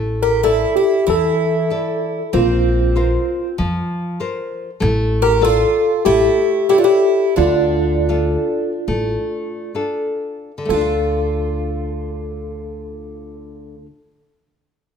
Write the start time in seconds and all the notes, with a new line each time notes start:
Already playing: A1 A3
0.23 G4 A#4
0.43 E4 A4 D5
0.76 E4 G4
1.07 E2 E3 E4 A4
1.70 E4 A4 D5
2.33 A#1 A#3 C4 F4
2.96 F4 A#4 C5
3.58 F2 F3
4.20 F4 A#4 C5
4.80 A1 A3
5.22 G4 A#4
5.41 F4 A4 D5
6.05 A1 A3 E4 G4
6.69 E4 G4 A4 C#5
6.78 D4 F4
6.84 E4 G4
7.36 D2 D3 D4 F4
8.09 D4 F4 A4
8.88 A1 A3
9.75 D4 F4 A4
10.58 D3
10.65 D2 A3 A4
10.70 D4 F4
10.81 F4